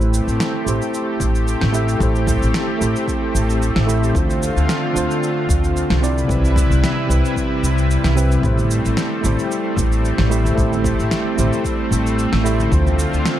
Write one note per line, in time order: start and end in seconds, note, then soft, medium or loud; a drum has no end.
0.00 0.21 A1 medium
0.00 0.63 A3 medium
0.00 5.99 A3 medium
0.00 5.99 C4 medium
0.00 0.63 E4 medium
0.00 0.64 G4 medium
0.00 4.11 G4 medium
0.00 0.65 C5 medium
0.00 cabasa soft
0.14 cabasa medium
0.27 0.36 A1 medium
0.27 cabasa soft
0.40 snare medium
0.40 cabasa soft
0.64 0.77 A1 medium
0.64 1.70 A3 medium
0.64 1.71 E4 medium
0.64 1.71 G4 medium
0.64 cabasa medium
0.69 1.72 C5 medium
0.82 cabasa soft
0.94 cabasa soft
1.20 1.55 A1 medium
1.20 kick medium
1.20 cabasa medium
1.35 cabasa soft
1.48 cabasa soft
1.61 1.95 A1 medium
1.61 snare medium
1.72 1.97 A3 medium
1.72 1.97 E4 medium
1.72 1.98 G4 medium
1.72 1.98 E5 medium
1.72 cabasa medium
1.89 cabasa soft
1.99 2.35 A1 loud
1.99 2.77 A3 medium
1.99 2.78 E4 medium
1.99 2.79 G4 medium
1.99 kick loud
1.99 cabasa soft
2.03 2.79 C5 medium
2.16 cabasa soft
2.27 kick loud
2.27 cabasa medium
2.42 2.51 A1 medium
2.42 cabasa soft
2.54 snare medium
2.54 cabasa soft
2.79 2.91 A1 medium
2.79 3.84 A3 medium
2.79 3.85 E4 medium
2.79 3.86 G4 medium
2.79 cabasa medium
2.83 3.86 C5 medium
2.96 cabasa soft
3.08 kick medium
3.08 cabasa soft
3.35 3.69 A1 medium
3.35 cabasa medium
3.50 cabasa soft
3.62 cabasa soft
3.76 4.09 A1 medium
3.76 snare medium
3.87 4.11 A3 medium
3.87 4.12 E4 medium
3.87 4.12 G4 medium
3.87 4.12 E5 loud
3.87 cabasa medium
4.04 cabasa soft
4.13 4.49 D2 medium
4.13 4.91 D3 medium
4.13 6.01 D3 medium
4.13 4.92 D4 medium
4.13 6.01 F4 medium
4.13 4.93 F4 medium
4.13 kick loud
4.13 cabasa soft
4.18 4.94 C5 medium
4.30 cabasa soft
4.43 cabasa medium
4.56 4.65 D2 medium
4.56 cabasa soft
4.69 snare medium
4.69 cabasa soft
4.93 5.05 D2 medium
4.93 5.98 D3 medium
4.93 5.99 D4 medium
4.93 6.00 F4 medium
4.93 cabasa medium
4.98 6.01 C5 medium
5.11 cabasa soft
5.23 cabasa soft
5.49 5.83 D2 medium
5.49 kick loud
5.49 cabasa medium
5.64 cabasa soft
5.77 cabasa soft
5.90 6.23 C2 medium
5.90 snare medium
6.01 6.26 C3 medium
6.01 8.41 C3 medium
6.01 12.68 G3 medium
6.01 6.26 C4 medium
6.01 8.41 E4 medium
6.01 6.26 E4 medium
6.01 8.41 B4 medium
6.01 6.27 D5 loud
6.01 cabasa medium
6.18 cabasa soft
6.27 6.64 C2 medium
6.27 7.05 C3 medium
6.27 7.06 C4 medium
6.27 7.07 E4 medium
6.27 kick loud
6.27 cabasa soft
6.31 7.08 B4 medium
6.45 cabasa soft
6.56 kick loud
6.56 cabasa medium
6.70 6.79 C2 medium
6.70 cabasa soft
6.84 snare medium
6.84 cabasa soft
7.07 7.20 C2 medium
7.07 8.13 C3 medium
7.07 8.13 C4 medium
7.07 8.14 E4 medium
7.07 cabasa medium
7.12 8.15 B4 medium
7.25 cabasa soft
7.36 kick medium
7.36 cabasa soft
7.63 7.98 C2 medium
7.63 cabasa medium
7.78 cabasa soft
7.91 cabasa soft
8.04 8.38 C2 medium
8.04 snare medium
8.04 cabasa soft
8.16 8.29 C3 medium
8.16 8.30 C4 medium
8.16 8.30 E4 medium
8.16 8.30 B4 medium
8.16 cabasa medium
8.32 cabasa soft
8.41 8.78 A1 medium
8.41 9.20 A3 medium
8.41 13.39 A3 medium
8.41 13.39 C4 medium
8.41 9.21 E4 medium
8.41 9.21 G4 medium
8.41 kick loud
8.41 cabasa soft
8.46 9.22 C5 medium
8.58 high conga medium
8.58 cabasa soft
8.71 cabasa medium
8.85 8.94 A1 medium
8.85 cabasa soft
8.97 snare medium
8.97 cabasa soft
9.21 9.34 A1 medium
9.21 10.27 A3 medium
9.21 10.28 E4 medium
9.21 10.28 G4 medium
9.21 high conga medium
9.21 cabasa medium
9.26 10.29 C5 medium
9.39 cabasa soft
9.52 cabasa soft
9.76 10.12 A1 medium
9.76 kick loud
9.76 low conga medium
9.76 cabasa medium
9.92 cabasa soft
10.05 cabasa soft
10.18 10.52 A1 medium
10.18 snare medium
10.30 10.54 A3 loud
10.30 10.55 E4 medium
10.30 10.55 G4 medium
10.30 10.55 E5 loud
10.30 cabasa medium
10.45 high conga medium
10.45 cabasa soft
10.55 10.92 A1 medium
10.55 11.34 A3 medium
10.55 11.35 E4 medium
10.55 11.35 G4 medium
10.55 kick loud
10.55 cabasa soft
10.60 11.36 C5 medium
10.73 high conga medium
10.73 cabasa soft
10.84 kick medium
10.84 cabasa medium
10.99 11.08 A1 medium
10.99 cabasa soft
11.11 snare medium
11.11 cabasa soft
11.36 11.48 A1 medium
11.36 12.41 A3 medium
11.36 12.42 E4 medium
11.36 12.43 G4 medium
11.36 high conga medium
11.36 cabasa medium
11.40 12.43 C5 medium
11.53 cabasa soft
11.65 kick medium
11.65 cabasa soft
11.91 12.26 A1 medium
11.91 low conga medium
11.91 cabasa medium
12.07 cabasa soft
12.19 cabasa soft
12.33 12.66 A1 medium
12.33 snare medium
12.44 12.68 A3 loud
12.44 12.69 E4 medium
12.44 12.69 G4 medium
12.44 12.70 E5 loud
12.44 cabasa medium
12.60 high conga medium
12.60 cabasa soft
12.69 13.06 D2 loud
12.69 13.39 D3 medium
12.69 13.39 D4 medium
12.69 13.39 F4 medium
12.69 kick loud
12.69 cabasa soft
12.74 13.39 C5 medium
12.86 high conga medium
12.86 cabasa soft
12.99 cabasa medium
13.13 13.22 D2 medium
13.13 cabasa soft
13.26 snare medium
13.26 cabasa soft